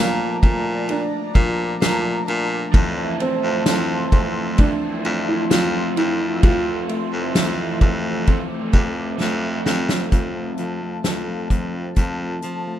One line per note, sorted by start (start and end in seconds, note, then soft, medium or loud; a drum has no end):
0.00 0.37 A#2 loud
0.00 1.35 F3 medium
0.00 0.42 A3 medium
0.00 0.93 A#3 loud
0.00 2.70 D5 medium
0.00 6.39 A5 medium
0.00 2.70 A#5 medium
0.43 1.04 A#2 loud
0.43 1.81 A3 medium
0.43 kick medium
0.43 ride soft
0.89 2.27 D4 medium
0.89 2.24 D4 loud
0.89 ride medium
1.35 1.76 A#2 loud
1.35 2.74 F3 medium
1.35 kick loud
1.35 ride soft
1.81 2.22 A#2 loud
1.81 3.19 A3 medium
1.81 snare loud
1.81 ride medium
1.81 tambourine medium
2.28 2.69 A#2 loud
2.28 2.83 D4 medium
2.28 ride soft
2.72 3.15 F2 loud
2.72 3.66 E3 medium
2.72 4.57 F3 medium
2.72 4.58 A3 loud
2.72 10.08 E5 medium
2.72 6.39 C6 loud
2.72 kick loud
2.72 ride medium
2.76 4.60 C4 loud
2.76 4.60 E4 loud
3.20 4.12 A3 medium
3.20 4.63 C4 loud
3.20 ride medium
3.43 3.63 F2 loud
3.66 4.07 F2 loud
3.66 7.16 E3 medium
3.66 snare loud
3.66 ride medium
3.66 tambourine medium
4.12 4.73 F2 loud
4.12 5.51 A3 medium
4.12 kick loud
4.12 ride soft
4.57 5.49 F3 medium
4.57 5.51 A3 medium
4.57 5.97 C4 medium
4.57 5.52 C4 medium
4.57 5.30 D4 loud
4.57 kick loud
4.57 ride medium
4.61 5.53 E4 medium
5.05 5.45 F2 loud
5.05 ride soft
5.28 5.52 E4 loud
5.50 5.92 F2 loud
5.50 6.42 F3 medium
5.50 6.88 A3 medium
5.50 6.43 A3 medium
5.50 6.44 C4 medium
5.50 5.93 F4 loud
5.50 snare loud
5.50 ride medium
5.50 tambourine medium
5.97 6.38 F2 loud
5.97 8.27 C4 medium
5.97 6.40 E4 loud
5.97 ride medium
6.42 6.84 F2 medium
6.42 7.34 F3 medium
6.42 7.35 A3 medium
6.42 7.37 C4 loud
6.42 9.62 F4 loud
6.42 10.09 A4 medium
6.42 8.26 C6 medium
6.42 kick loud
6.42 ride medium
6.89 7.81 A3 medium
6.89 ride soft
7.13 7.33 F2 medium
7.34 7.76 F2 loud
7.34 8.74 E3 medium
7.34 8.25 F3 medium
7.34 8.27 A3 medium
7.34 8.29 C4 medium
7.34 snare loud
7.34 ride medium
7.34 tambourine medium
7.81 8.42 F2 loud
7.81 9.20 A3 medium
7.81 kick medium
7.81 ride soft
8.26 9.17 F3 medium
8.26 9.19 A3 medium
8.26 9.66 C4 medium
8.26 9.20 C4 medium
8.26 10.11 D6 loud
8.26 kick medium
8.26 ride medium
8.73 9.14 F2 loud
8.73 kick medium
8.73 ride medium
9.18 9.61 F2 loud
9.18 10.63 F3 medium
9.18 10.63 A3 medium
9.18 10.35 A3 medium
9.18 10.63 C4 medium
9.18 snare medium
9.66 10.07 F2 loud
9.66 11.74 C4 medium
9.66 snare loud
9.89 snare loud
10.11 10.53 F2 medium
10.11 10.58 F3 medium
10.11 12.79 C4 medium
10.11 12.79 A4 medium
10.11 12.79 F5 medium
10.11 12.79 A5 medium
10.11 kick loud
10.11 closed hi-hat medium
10.35 10.81 A3 soft
10.58 10.99 F2 medium
10.58 11.04 F3 medium
10.58 closed hi-hat soft
10.82 11.26 A3 medium
11.04 11.45 F2 medium
11.04 11.51 F3 medium
11.04 snare loud
11.04 closed hi-hat medium
11.28 12.19 A3 soft
11.50 11.91 F2 medium
11.50 11.97 F3 soft
11.50 kick medium
11.50 closed hi-hat soft
11.74 12.79 C4 medium
11.96 12.37 F2 medium
11.96 12.43 F3 medium
11.96 kick medium
11.96 closed hi-hat medium
12.21 12.65 A3 soft
12.42 12.79 F3 medium
12.42 12.79 F3 soft
12.42 closed hi-hat soft
12.67 12.79 A3 soft